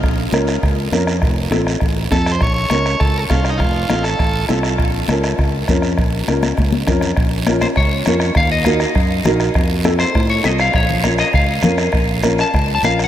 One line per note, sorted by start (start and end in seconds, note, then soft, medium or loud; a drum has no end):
0.03 0.27 A#1 medium
0.03 bombo low medium
0.03 bombo rim medium
0.03 high conga soft
0.03 long guiro medium
0.31 0.56 C#2 medium
0.31 0.53 C#4 medium
0.31 0.53 F4 medium
0.31 0.53 A#4 medium
0.31 bombo rim medium
0.31 high conga medium
0.31 short guiro medium
0.47 bombo rim medium
0.47 short guiro medium
0.63 0.87 C#2 medium
0.63 bombo low medium
0.63 bombo rim medium
0.63 high conga soft
0.63 long guiro medium
0.91 1.24 F2 medium
0.91 1.13 C#4 medium
0.91 1.13 F4 medium
0.91 1.13 A#4 medium
0.91 bombo rim medium
0.91 high conga medium
0.91 short guiro medium
1.07 bombo rim medium
1.07 short guiro medium
1.22 1.46 F1 medium
1.22 bombo low medium
1.22 bombo rim medium
1.22 high conga soft
1.22 long guiro medium
1.50 1.75 A1 medium
1.50 1.72 C4 medium
1.50 1.72 F4 medium
1.50 1.72 A4 medium
1.50 bombo rim medium
1.50 high conga medium
1.50 short guiro medium
1.67 bombo rim medium
1.67 short guiro medium
1.80 2.05 A1 medium
1.80 bombo low medium
1.80 bombo rim medium
1.80 high conga soft
1.80 long guiro medium
2.10 2.43 F2 medium
2.10 2.32 C4 medium
2.10 2.32 F4 medium
2.10 2.32 A4 medium
2.10 bombo low medium
2.10 bombo rim medium
2.10 high conga medium
2.10 short guiro medium
2.26 bombo rim medium
2.26 short guiro medium
2.32 2.42 C5 loud
2.41 2.65 A#1 medium
2.41 2.53 C#5 medium
2.41 bombo low medium
2.41 bombo rim medium
2.41 high conga soft
2.41 long guiro medium
2.54 3.01 C#5 loud
2.70 2.94 C#2 medium
2.70 2.92 C#4 medium
2.70 2.92 F4 medium
2.70 2.92 A#4 medium
2.70 bombo rim medium
2.70 high conga medium
2.70 short guiro medium
2.86 bombo rim medium
2.86 short guiro medium
3.00 3.24 C#2 medium
3.00 3.18 A4 medium
3.00 bombo low medium
3.00 bombo rim medium
3.00 high conga soft
3.00 long guiro medium
3.18 3.24 A4 medium
3.18 3.20 A#4 medium
3.29 3.61 C2 medium
3.29 3.51 C#4 medium
3.29 3.50 F4 medium
3.29 3.51 F4 medium
3.29 3.51 A4 medium
3.29 bombo low medium
3.29 bombo rim medium
3.29 high conga medium
3.29 short guiro medium
3.45 bombo rim medium
3.45 short guiro medium
3.50 3.60 D#4 medium
3.58 3.84 F1 medium
3.58 4.05 F4 medium
3.58 bombo low medium
3.58 bombo rim medium
3.58 high conga soft
3.58 long guiro medium
3.89 4.13 A1 medium
3.89 4.10 C4 medium
3.89 4.11 F4 medium
3.89 4.11 A4 medium
3.89 bombo rim medium
3.89 high conga medium
3.89 short guiro medium
4.03 4.45 A4 medium
4.03 bombo rim medium
4.03 short guiro medium
4.19 4.43 A1 medium
4.19 bombo low medium
4.19 bombo rim medium
4.19 high conga soft
4.19 long guiro medium
4.49 4.79 C2 medium
4.49 4.70 C4 medium
4.49 4.70 F4 medium
4.49 4.70 A4 medium
4.49 bombo rim medium
4.49 high conga medium
4.49 short guiro medium
4.63 bombo rim medium
4.63 short guiro medium
4.78 5.03 A#1 medium
4.78 bombo low medium
4.78 bombo rim medium
4.78 high conga soft
4.78 long guiro medium
5.08 5.33 C#2 loud
5.08 5.30 C#4 medium
5.08 5.30 F4 medium
5.08 5.31 A#4 medium
5.08 bombo rim medium
5.08 high conga medium
5.08 short guiro medium
5.24 bombo rim medium
5.24 short guiro medium
5.38 5.63 C#2 loud
5.38 bombo low medium
5.38 bombo rim medium
5.38 high conga soft
5.38 long guiro medium
5.68 6.00 F2 medium
5.68 5.90 C#4 medium
5.68 5.90 F4 medium
5.68 5.90 A#4 medium
5.68 bombo low medium
5.68 bombo rim medium
5.68 high conga medium
5.68 short guiro medium
5.82 bombo rim medium
5.82 short guiro medium
5.98 6.22 A#1 medium
5.98 bombo low medium
5.98 bombo rim medium
5.98 high conga soft
5.98 long guiro medium
6.28 6.52 C#2 medium
6.28 6.49 C#4 medium
6.28 6.49 F4 medium
6.28 6.49 A#4 medium
6.28 bombo rim medium
6.28 high conga medium
6.28 short guiro medium
6.43 bombo rim medium
6.43 high conga medium
6.43 short guiro medium
6.57 6.82 C#2 medium
6.57 bombo low medium
6.57 bombo rim medium
6.57 high conga medium
6.57 long guiro medium
6.72 high conga loud
6.86 7.11 F2 medium
6.86 7.08 C#4 medium
6.86 7.08 F4 medium
6.86 7.08 A#4 medium
6.86 bombo low medium
6.86 bombo rim medium
6.86 low conga medium
6.86 short guiro medium
7.01 bombo rim medium
7.01 low conga medium
7.01 short guiro medium
7.17 7.65 A#1 medium
7.17 bombo low medium
7.17 bombo rim medium
7.17 long guiro medium
7.47 7.68 C#4 medium
7.47 7.68 F4 medium
7.47 7.68 A#4 medium
7.47 bombo rim loud
7.47 high conga medium
7.47 short guiro medium
7.61 7.67 C5 medium
7.61 bombo rim medium
7.61 high conga medium
7.61 short guiro medium
7.76 8.01 C#2 loud
7.76 8.32 C#5 medium
7.76 bombo low medium
7.76 bombo rim medium
7.76 long guiro medium
8.05 8.30 F2 medium
8.05 8.27 C#4 medium
8.05 8.27 F4 medium
8.05 8.28 A#4 medium
8.05 bombo rim medium
8.05 high conga medium
8.05 short guiro medium
8.20 bombo rim medium
8.20 short guiro medium
8.35 8.84 D#2 medium
8.35 8.51 F5 loud
8.35 bombo low medium
8.35 bombo rim medium
8.35 long guiro medium
8.52 9.37 D#5 medium
8.65 8.87 D#4 medium
8.65 8.87 F#4 medium
8.65 8.87 A#4 medium
8.65 bombo rim medium
8.65 high conga medium
8.65 short guiro medium
8.80 bombo rim medium
8.80 short guiro medium
8.95 9.20 F#2 loud
8.95 bombo low medium
8.95 bombo rim medium
8.95 long guiro medium
9.24 9.49 A#1 medium
9.24 9.46 D#4 medium
9.24 9.47 F#4 medium
9.24 9.47 A#4 medium
9.24 bombo rim medium
9.24 high conga medium
9.24 low conga medium
9.24 short guiro medium
9.40 bombo rim medium
9.40 short guiro medium
9.54 10.03 F2 medium
9.54 bombo low medium
9.54 bombo rim medium
9.54 long guiro medium
9.84 10.06 C4 medium
9.84 10.06 F4 medium
9.84 10.06 A4 medium
9.84 bombo rim medium
9.84 high conga medium
9.84 short guiro medium
9.99 10.28 C5 medium
9.99 bombo rim medium
9.99 short guiro medium
10.15 10.39 A2 loud
10.15 bombo low medium
10.15 bombo rim medium
10.15 long guiro medium
10.30 10.45 C#5 medium
10.43 10.69 C2 medium
10.43 10.65 C4 medium
10.43 10.65 F4 medium
10.43 10.65 A4 medium
10.43 10.60 D#5 loud
10.43 bombo rim medium
10.43 high conga medium
10.43 short guiro medium
10.58 10.76 F5 loud
10.58 bombo rim medium
10.58 short guiro medium
10.73 11.22 A#1 medium
10.73 11.21 C#5 medium
10.73 bombo low medium
10.73 bombo rim medium
10.73 long guiro medium
10.90 low conga medium
11.03 11.25 C#4 medium
11.03 11.25 F4 medium
11.03 11.25 A#4 medium
11.03 bombo rim medium
11.03 high conga medium
11.03 short guiro medium
11.18 11.33 D#5 medium
11.18 bombo rim medium
11.18 short guiro medium
11.33 11.58 C#2 medium
11.33 11.76 F5 medium
11.33 bombo low medium
11.33 bombo rim medium
11.33 long guiro medium
11.62 11.87 F2 medium
11.62 11.84 C#4 medium
11.62 11.85 F4 medium
11.62 11.85 A#4 medium
11.62 bombo rim medium
11.62 high conga medium
11.62 low conga medium
11.62 short guiro medium
11.78 bombo rim medium
11.78 short guiro medium
11.92 12.41 A#1 medium
11.92 bombo low medium
11.92 bombo rim medium
11.92 long guiro medium
12.23 12.44 C#4 medium
12.23 12.44 F4 medium
12.23 12.44 A#4 medium
12.23 bombo rim medium
12.23 high conga medium
12.23 short guiro medium
12.38 12.74 A5 loud
12.38 bombo rim medium
12.38 short guiro medium
12.54 12.78 C#2 medium
12.54 bombo low medium
12.54 bombo rim medium
12.54 long guiro medium
12.75 12.84 A5 loud
12.83 13.07 A#1 medium
12.83 13.04 C#4 medium
12.83 13.04 F4 medium
12.83 13.04 A#4 medium
12.83 13.04 F5 loud
12.83 bombo rim medium
12.83 high conga medium
12.83 short guiro medium
12.99 bombo rim medium
12.99 short guiro medium
13.04 13.08 F#5 loud